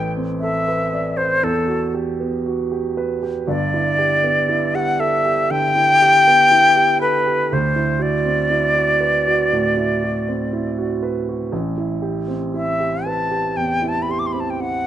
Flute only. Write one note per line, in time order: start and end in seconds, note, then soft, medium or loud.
0.00 0.12 G5 loud
0.40 1.18 E5 medium
1.17 1.45 C5 medium
1.44 1.94 A4 medium
3.47 4.77 D5 loud
4.75 5.01 F#5 loud
5.00 5.52 E5 loud
5.51 7.01 G5 loud
7.02 7.55 B4 medium
7.53 8.04 C5 medium
8.02 11.04 D5 medium
12.55 13.08 E5 medium
13.06 13.58 A5 medium
13.57 13.90 G5 medium
13.88 14.04 A5 medium
14.02 14.12 B5 medium
14.11 14.21 C6 medium
14.19 14.28 D6 medium
14.26 14.34 C6 medium
14.32 14.42 B5 medium
14.40 14.52 A5 medium
14.50 14.62 G5 medium
14.61 14.87 F#5 medium